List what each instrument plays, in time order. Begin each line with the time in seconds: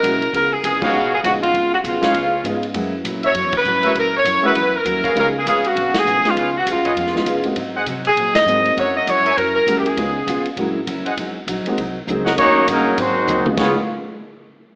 Already playing: saxophone section A#4
0.03 upright bass B1, steel-string acoustic guitar F#3 C#4 E4 A#4, upright piano G#3 A#3 C#4 E4 F#4, kick, hi-hat pedal, ride
0.22 ride
0.33 upright bass C#2, steel-string acoustic guitar C#3 G#3 B3 F4, saxophone section A#4, kick, ride
0.53 saxophone section G#4
0.63 upright bass C2, steel-string acoustic guitar C#3 G#3 B3 F4, saxophone section G#4, kick, hi-hat pedal, ride
0.82 upright piano G#3 B3 C#4 D#4 F4, saxophone section F#4, trumpet section G#4 B4 C#5 F5, kick, crash
0.93 upright bass B1, steel-string acoustic guitar C#3 G#3 B3 F4
1.14 saxophone section G#4
1.24 upright bass A#1, steel-string acoustic guitar C#3 G#3 B3 F4, upright piano G#3 B3 C#4 D#4 F4, saxophone section F#4, kick, hi-hat pedal, ride
1.42 saxophone section F4, ride
1.54 upright bass G#1, steel-string acoustic guitar C#3 G#3 B3, kick, ride
1.58 steel-string acoustic guitar F4
1.73 saxophone section F#4
1.84 upright bass B1, steel-string acoustic guitar C#3 G#3 B3 F4, saxophone section F4, kick, hi-hat pedal, ride
1.93 upright bass G#1
2.01 upright bass F1, upright piano G#3 B3 C#4 D#4 F4, trumpet section G#4 B4 C#5 F5, snare, ride
2.13 upright bass C#2, steel-string acoustic guitar C#3 G#3, kick, ride
2.18 steel-string acoustic guitar B3 F4
2.44 upright bass G#2, steel-string acoustic guitar C#3 G#3 B3 F4, upright piano G#3 B3 C#4 D#4 F4, kick, hi-hat pedal, ride
2.63 ride
2.74 upright bass F#2, steel-string acoustic guitar F#3 C#4 E4 A#4, upright piano G#3 A#3 C#4 E4 F#4, kick, ride
3.04 upright bass A#2, steel-string acoustic guitar F#3 C#4 E4 A#4, kick, hi-hat pedal, ride
3.23 trumpet section F#4 A#4 C#5 E5, saxophone section C#5, ride
3.35 upright bass F#2, steel-string acoustic guitar F#3 C#4 E4 A#4, kick, ride
3.44 upright bass E2
3.52 upright bass C#2, kick, crash
3.57 saxophone section B4
3.64 upright bass G#2, steel-string acoustic guitar F#3 C#4 E4, hi-hat pedal
3.68 steel-string acoustic guitar A#4
3.83 upright piano G#3 A#3 C#4 E4 F#4, trumpet section F#4 A#4 C#5 E5, ride
3.95 upright bass A#2, steel-string acoustic guitar F#3 C#4 E4 A#4, kick, ride
3.99 saxophone section A#4
4.16 saxophone section C#5
4.24 upright bass F#2, steel-string acoustic guitar F#3 C#4 E4 A#4, kick, hi-hat pedal, ride
4.43 upright piano G#3 A#3 C#4 E4 F#4, trumpet section F#4 A#4 C#5 E5, saxophone section B4, muted upright bass stroke
4.55 upright bass E2, steel-string acoustic guitar F#3 C#4 E4 A#4, kick, ride
4.76 saxophone section A#4
4.85 upright bass D#2, steel-string acoustic guitar F#3 C#4 E4 A#4, kick, hi-hat pedal, ride
5.04 trumpet section G#4 B4 C#5 F5, kick, ride
5.15 upright bass C#2, steel-string acoustic guitar C#3 G#3 B3 F4, upright piano G#3 B3 C#4 D#4 F4, trumpet section G#4 B4 C#5 F5, saxophone section A#4, kick, ride
5.38 saxophone section G#4
5.45 upright bass G#1, steel-string acoustic guitar C#3 G#3 B3 F4, trumpet section G#4 B4 C#5 F5, saxophone section G#4, kick, hi-hat pedal, ride
5.64 saxophone section F#4, ride
5.76 upright bass A#1, steel-string acoustic guitar C#3 G#3 B3 F4, kick, ride
5.94 saxophone section G#4, muted upright bass stroke, snare, ride
6.05 upright bass B1, steel-string acoustic guitar C#3 G#3 B3 F4, hi-hat pedal
6.24 upright piano G#3 B3 C#4 D#4 F4, muted upright bass stroke, snare, ride
6.29 saxophone section F4
6.36 upright bass C#2, steel-string acoustic guitar C#3 G#3 B3 F4, trumpet section G#4 B4 C#5 F5, kick, ride
6.57 saxophone section F#4
6.66 upright bass D#2, steel-string acoustic guitar C#3 G#3 B3 F4, kick, hi-hat pedal, ride
6.70 saxophone section F4
6.76 upright bass C#2
6.84 upright bass B1, trumpet section G#4 B4 C#5 D#5, ride
6.96 upright bass F2, steel-string acoustic guitar C#3 G#3 B3 F4, kick, ride
7.07 snare
7.15 upright piano G#3 B3 C#4 D#4 F4, snare
7.26 upright bass F#2, steel-string acoustic guitar C#3 G#3 B3 F4, kick, hi-hat pedal, ride
7.43 upright piano G#3 A#3 C4 D#4 F#4, ride
7.56 upright bass G#2, steel-string acoustic guitar G#2 F#3 C4 D#4, kick, ride
7.75 trumpet section G#4 C5 D#5 F#5
7.85 steel-string acoustic guitar G#2 F#3 C4 D#4, upright bass C3, kick, hi-hat pedal, ride
8.05 saxophone section G#4, ride
8.16 steel-string acoustic guitar G#2 F#3 C4, upright bass A#2, kick, ride
8.21 steel-string acoustic guitar D#4
8.35 saxophone section D#5, snare, ride
8.46 upright bass G#2, steel-string acoustic guitar G#2 F#3 C4 D#4, upright piano G#3 A#3 C4 D#4 F#4, hi-hat pedal
8.66 ride
8.77 upright bass F#2, steel-string acoustic guitar F#3 C#4 E4 A#4, trumpet section A#4 C#5 E5 F#5, saxophone section C#5, kick, ride
8.97 saxophone section D#5
9.07 upright bass G#2, steel-string acoustic guitar F#3 C#4 E4 A#4, saxophone section C#5, kick, hi-hat pedal, ride
9.24 trumpet section A#4 C#5 E5 G#5, ride
9.37 upright bass F#2, steel-string acoustic guitar F#3 C#4 E4 A#4, saxophone section A#4, kick, ride
9.55 saxophone section A#4
9.67 upright bass E2, steel-string acoustic guitar F#3 C#4 E4 A#4, upright piano G#3 A#3 C#4 E4 F#4, kick, hi-hat pedal, ride
9.78 saxophone section G4
9.86 saxophone section G#4, ride
9.97 upright bass C#2, steel-string acoustic guitar C#3 G#3 B3, upright piano G#3 B3 C#4 D#4 F4, kick, ride
10.01 steel-string acoustic guitar F4
10.27 upright bass B1, steel-string acoustic guitar C#3 G#3 B3 F4, kick, hi-hat pedal, ride
10.44 muted upright bass stroke, ride
10.56 upright bass A#1, steel-string acoustic guitar F#3 C#4, upright piano G#3 A#3 C#4 E4 F#4, kick, ride
10.61 steel-string acoustic guitar E4 A#4
10.87 upright bass F#1, steel-string acoustic guitar F#3 C#4 E4 A#4, kick, hi-hat pedal, ride
11.05 trumpet section G#4 C5 D#5 F#5, muted upright bass stroke, ride
11.17 upright bass G#1, steel-string acoustic guitar G#2 F#3 C4 D#4, kick, ride
11.47 upright bass A#1, steel-string acoustic guitar G#2 F#3 C4 D#4, kick, hi-hat pedal, ride
11.65 upright piano G#3 A#3 C4 D#4 F#4, muted upright bass stroke, ride
11.77 upright bass C2, steel-string acoustic guitar G#2 F#3 C4 D#4, kick, ride
12.07 upright bass C#2, steel-string acoustic guitar G#2 F#3 C4 D#4, upright piano G#3 A#3 C4 D#4 G#4, hi-hat pedal
12.25 trumpet section A#4 C#5 D#5 F#5, snare
12.37 upright bass D#2, steel-string acoustic guitar D#3 A#3 C#4 F#4, trombone section F#3 A#3 C#4, trumpet section A#3 D#4 F#4 C#5, kick, ride
12.66 upright bass G2, trombone section C#3 F#3 A#3, steel-string acoustic guitar D#3 A#3 C#4 F#4, kick, hi-hat pedal, ride
12.71 trumpet section F#3 C#4 D#4 A#4
12.96 steel-string acoustic guitar G#2 F#3 C4 D#4, upright bass G#2, trombone section D#3 F#3 C4, trumpet section G#3 F#4, kick, ride
13.01 trumpet section D#4 C5
13.27 upright bass D#2, steel-string acoustic guitar G#2 F#3 C4 D#4, hi-hat pedal, mid tom
13.46 upright piano G#3 B3 C#4 D#4 F4, mid tom
13.57 upright bass C#2, trombone section C#3 G#3 B3 F4, steel-string acoustic guitar C#3 G#3 B3, upright piano G#3 B3 C#4 D#4 F4, trumpet section B3 F4 G#4 C#5, kick, snare, ride bell
13.61 steel-string acoustic guitar F4